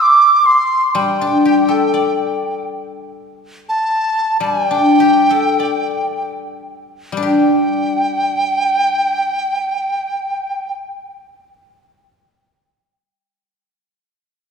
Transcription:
0.02 dizi D6
0.46 dizi C6
0.95 guzheng G3, dizi G5
1.21 guzheng D4
1.45 guzheng G4
1.68 guzheng A4
1.94 guzheng D5
3.69 dizi A5
4.40 guzheng G3, dizi G#5
4.67 dizi G5
4.71 guzheng D4
5.00 guzheng G4
5.30 guzheng A4
5.60 guzheng D5
7.12 guzheng G3
7.17 guzheng D4
7.22 guzheng G4, dizi G5

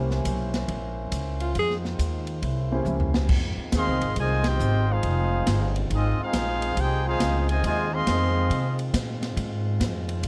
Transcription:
Already playing: upright bass C2, grand piano A#3 C#4 E4 G4 C5, trombone section A#3 C#4 E4 C5
0.11 snare
0.25 upright bass B1, kick, hi-hat pedal, ride
0.54 snare, ride
0.68 upright bass A#1, kick, ride
1.12 upright bass C#2, kick, hi-hat pedal, ride
1.40 tenor saxophone F4, ride
1.55 upright bass F2, trombone section D#3 G#3 F4, kick, ride
1.59 tenor saxophone G#4
1.70 snare
1.85 snare
1.99 upright bass D#2, kick, hi-hat pedal, ride
2.27 ride
2.41 upright bass C2, trombone section C#3 A#3 E4, kick, ride
2.72 grand piano A#3 C#4 E4 G4 C5
2.85 upright bass C#2, hi-hat pedal, high tom
3.00 floor tom
3.14 snare
3.29 upright bass F2, trombone section D#3 G#3 C4 F4, kick, crash
3.57 muted upright bass stroke
3.72 upright bass D#2, trombone section D#3 G#3 C4, trumpet section G#4 D#5 C6, kick, snare, hi-hat pedal, ride
3.76 trumpet section F5
3.86 upright bass C2
4.01 upright bass G#1, ride
4.16 upright bass C2, trombone section C3 D#3 G#3, trumpet section F4 C5 D#5 G#5, kick, ride
4.44 trombone section C4 D#4 G4, trumpet section F4 C5 D#5 G5, snare, ride
4.59 upright bass G#1, hi-hat pedal
4.88 trombone section G#3 C4 F4, trumpet section D#4 G#4 C5 F5
5.03 upright bass F1, kick, ride
5.47 upright bass G1, kick, snare, hi-hat pedal, ride
5.76 ride
5.90 upright bass G#1, trombone section G#3 C4 D#4, trumpet section G#4, kick, ride
5.94 trumpet section C4 F4 D#5
6.19 trombone section G#3 C4 F4, trumpet section F5, muted upright bass stroke
6.23 trumpet section D#4 G#4 C5
6.33 upright bass A#1, kick, snare, hi-hat pedal, ride
6.62 ride
6.77 upright bass C2, trumpet section D#4 G#4 C5 G5, trombone section G4, kick, ride
7.06 trombone section G#3 C4 F4, trumpet section D#4 G#4 C5 F5
7.20 upright bass C#2, kick, snare, hi-hat pedal, ride
7.49 trombone section C3 D#3 G#3, trumpet section F4 C5 D#5 G#5, ride
7.63 upright bass D#2, trombone section C3 D#3 G#3, trumpet section F4 C5 D#5 G#5, kick, ride
7.93 trombone section D#3 G#3 C4, trumpet section G#4 D#5 F5 C6
8.07 upright bass F2, kick, snare, hi-hat pedal, ride
8.50 upright bass C3, kick, ride
8.79 ride
8.93 upright bass A#2, kick, snare, hi-hat pedal, ride
9.23 snare, ride
9.36 upright bass G#2, kick, ride
9.80 upright bass F2, kick, snare, hi-hat pedal, ride
10.09 ride
10.22 upright bass A#1, trombone section A#3 C#4, kick, ride

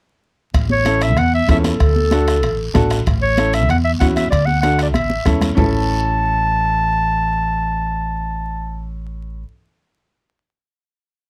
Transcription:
0.54 upright bass A1, bombo low, bombo rim, high conga, high timbale, long guiro
0.70 clarinet C#5, high conga
0.84 upright piano C#4 E4 A4, bombo rim, high conga, high timbale, short guiro
1.01 clarinet E5, bombo rim, high timbale, short guiro
1.17 upright bass E2, clarinet F#5, bombo rim, high conga, high timbale, long guiro
1.35 clarinet E5
1.48 upright bass E2, upright piano C#4 E4 A4, clarinet E5, bombo low, bombo rim, high conga, high timbale, low timbale, short guiro
1.64 clarinet A4, bombo rim, high conga, high timbale, short guiro
1.80 upright bass D2, bombo low, bombo rim, high conga, high timbale, long guiro
1.96 high conga
2.11 upright piano D4 F#4 A4, bombo rim, high conga, high timbale, short guiro
2.28 bombo rim, high timbale, short guiro
2.43 upright bass A1, bombo rim, high conga, high timbale, long guiro
2.74 upright bass A1, upright piano D4 F#4 A4, bombo low, bombo rim, high conga, high timbale, short guiro
2.90 bombo rim, high timbale, short guiro
3.06 upright bass A1, bombo low, bombo rim, high conga, high timbale, long guiro
3.22 clarinet C#5
3.37 upright piano C#4 E4 A4, bombo rim, high conga, high timbale, short guiro
3.53 clarinet E5, bombo rim, high timbale, short guiro
3.69 upright bass E2, clarinet F#5, bombo rim, high conga, high timbale, long guiro
3.85 clarinet E5
4.00 upright bass E2, upright piano C#4 E4 F#4, clarinet F#5, bombo low, bombo rim, high conga, high timbale, short guiro
4.16 clarinet E5, bombo rim, high conga, high timbale, short guiro
4.31 upright bass D2, clarinet D5, bombo low, bombo rim, high conga, high timbale, long guiro
4.46 clarinet F#5, high conga
4.61 upright piano D4 F#4 A4, clarinet F#5, bombo rim, high conga, high timbale, short guiro
4.79 bombo rim, high timbale, short guiro
4.83 clarinet D5
4.93 upright bass A1, clarinet E5, bombo rim, high conga, high timbale, long guiro
5.10 high conga
5.25 upright bass E2, upright piano C#4 E4 A4, bombo low, bombo rim, low conga, high timbale, short guiro
5.41 bombo rim, low conga, high timbale, short guiro
5.55 upright bass A1, upright piano C#4 E4 A4, clarinet A5, bombo low, low conga, low timbale, long guiro

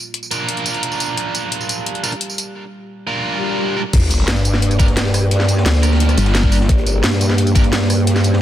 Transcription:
Already playing: ambient pad A#3 F4 D5
0.14 closed hi-hat
0.23 tambourine
0.31 distorted electric guitar D4 F4 A#4, closed hi-hat, tambourine
0.49 closed hi-hat
0.57 closed hi-hat
0.66 closed hi-hat, tambourine
0.74 closed hi-hat
0.83 closed hi-hat
0.92 tambourine
1.00 closed hi-hat, tambourine
1.17 ambient pad G4, closed hi-hat
1.35 closed hi-hat, tambourine
1.52 closed hi-hat
1.61 tambourine
1.69 closed hi-hat, tambourine
1.86 closed hi-hat
1.95 closed hi-hat
2.03 distorted electric guitar D4 F4 A#4, closed hi-hat, tambourine
2.12 closed hi-hat
2.21 closed hi-hat
2.30 tambourine
2.38 closed hi-hat, tambourine
3.07 distorted electric guitar D4 F4 A#4
3.24 swell
3.76 distorted electric guitar D4 F4 A#4
3.93 wobble bass G1, ambient pad A#3 G4 D5, kick, closed hi-hat, crash, sub drop
4.02 closed hi-hat
4.11 closed hi-hat, tambourine
4.28 wobble bass G2, snare, closed hi-hat
4.37 tambourine
4.45 closed hi-hat, tambourine
4.54 snare, closed hi-hat
4.62 closed hi-hat
4.71 closed hi-hat, tambourine
4.79 distorted electric guitar D4 G4 A#4, kick, closed hi-hat, tambourine
4.88 snare, closed hi-hat
4.97 snare, closed hi-hat
5.05 snare
5.14 cross-stick, closed hi-hat, open hi-hat, tambourine
5.31 closed hi-hat
5.40 snare
5.48 closed hi-hat, tambourine
5.57 snare
5.66 wobble bass D2, snare, closed hi-hat
5.75 snare, tambourine
5.83 distorted electric guitar D4 G4 A#4, cross-stick, closed hi-hat, tambourine
5.91 snare
6.00 closed hi-hat
6.09 cross-stick, closed hi-hat, tambourine
6.17 wobble bass G1, snare, closed hi-hat, tambourine
6.25 snare, closed hi-hat
6.35 snare, closed hi-hat
6.43 kick
6.52 distorted electric guitar D4 G4 A#4, closed hi-hat, open hi-hat, tambourine
6.61 snare
6.69 wobble bass G1, ambient pad C5, kick, closed hi-hat
6.78 closed hi-hat
6.87 closed hi-hat, tambourine
7.04 wobble bass G2, snare, closed hi-hat
7.12 tambourine
7.20 snare, closed hi-hat, tambourine
7.30 snare, closed hi-hat
7.38 closed hi-hat
7.47 closed hi-hat, tambourine
7.55 distorted electric guitar D4 G4 A#4, kick, closed hi-hat, tambourine
7.64 snare, closed hi-hat
7.73 snare, closed hi-hat
7.81 snare
7.90 cross-stick, closed hi-hat, open hi-hat, tambourine
8.07 closed hi-hat
8.15 snare, tambourine
8.24 closed hi-hat, tambourine
8.33 snare

